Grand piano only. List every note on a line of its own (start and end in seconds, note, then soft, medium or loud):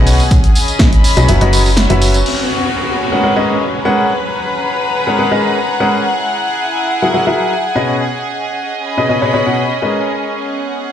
0.00 0.21 B2 loud
0.00 0.21 C#4 medium
0.00 0.21 G#4 medium
0.00 0.21 B4 medium
0.00 0.21 D#5 loud
1.17 1.27 F#3 medium
1.17 1.27 C#4 medium
1.17 1.27 G#4 medium
1.17 1.27 B4 medium
1.17 1.27 D#5 medium
1.29 1.38 F#3 medium
1.29 1.38 C#4 medium
1.29 1.38 F#4 medium
1.29 1.38 B4 medium
1.29 1.38 E5 loud
1.41 1.67 F#3 medium
1.41 1.67 C#4 medium
1.41 1.67 F#4 medium
1.41 1.67 B4 medium
1.41 1.67 D#5 loud
1.90 2.16 F#3 loud
1.90 2.16 C#4 medium
1.90 2.16 F#4 medium
1.90 2.16 B4 medium
1.90 2.16 E5 loud
3.12 3.22 G#3 medium
3.12 3.22 C#4 medium
3.12 3.22 G#4 medium
3.12 3.22 A#4 medium
3.12 3.22 B4 medium
3.12 3.22 F#5 medium
3.24 3.33 G#3 medium
3.24 3.33 C#4 medium
3.24 3.33 G#4 medium
3.24 3.33 A#4 medium
3.24 3.33 B4 medium
3.24 3.33 F#5 medium
3.36 3.62 G#3 medium
3.36 3.62 C#4 medium
3.36 3.62 G#4 medium
3.36 3.62 A#4 medium
3.36 3.62 B4 medium
3.36 3.62 D#5 medium
3.85 4.11 G#3 medium
3.85 4.11 C#4 medium
3.85 4.11 G#4 medium
3.85 4.11 A#4 medium
3.85 4.11 B4 medium
3.85 4.11 F#5 loud
5.07 5.17 G#3 medium
5.07 5.17 C#4 medium
5.07 5.17 G#4 medium
5.07 5.17 A#4 medium
5.07 5.17 B4 medium
5.07 5.17 F#5 medium
5.19 5.28 G#3 medium
5.19 5.28 C#4 medium
5.19 5.29 G#4 medium
5.19 5.28 A#4 medium
5.19 5.29 B4 medium
5.19 5.28 F#5 medium
5.31 5.57 G#3 medium
5.31 5.57 C#4 medium
5.31 5.57 G#4 medium
5.31 5.57 A#4 medium
5.31 5.57 B4 medium
5.31 5.57 D#5 medium
5.80 6.06 G#3 medium
5.80 6.06 C#4 medium
5.80 6.06 G#4 medium
5.80 6.06 A#4 medium
5.80 6.06 B4 medium
5.80 6.06 F#5 medium
7.02 7.12 F#3 medium
7.02 7.12 E4 medium
7.02 7.12 G#4 medium
7.02 7.12 A#4 medium
7.02 7.12 F#5 medium
7.14 7.24 F#3 medium
7.14 7.24 E4 medium
7.14 7.24 G#4 medium
7.14 7.24 A#4 medium
7.14 7.24 F#5 medium
7.27 7.53 F#3 medium
7.27 7.53 E4 medium
7.27 7.53 G#4 medium
7.27 7.53 A#4 medium
7.27 7.53 E5 loud
7.75 8.01 B2 medium
7.75 8.01 C#4 medium
7.75 8.01 G#4 medium
7.75 8.01 B4 medium
7.75 8.01 D#5 loud
8.98 9.07 B2 medium
8.98 9.07 C#4 medium
8.98 9.07 G#4 medium
8.98 9.07 B4 medium
8.98 9.07 D#5 medium
9.09 9.19 B2 medium
9.09 9.19 C#4 medium
9.09 9.19 G#4 medium
9.09 9.19 B4 medium
9.09 9.19 D#5 medium
9.22 9.31 B2 medium
9.22 9.31 C#4 medium
9.22 9.31 G#4 medium
9.22 9.31 B4 medium
9.22 9.31 C#5 medium
9.34 9.43 B2 medium
9.34 9.43 C#4 medium
9.34 9.43 G#4 medium
9.34 9.43 B4 medium
9.34 9.43 C#5 medium
9.46 9.62 B2 medium
9.46 9.62 C#4 medium
9.46 9.62 G#4 medium
9.46 9.62 B4 medium
9.46 9.62 F#5 medium
9.82 10.90 G#3 medium
9.82 10.90 C#4 medium
9.82 10.90 G#4 medium
9.82 10.90 A#4 medium
9.82 10.90 B4 medium
9.82 10.90 D#5 medium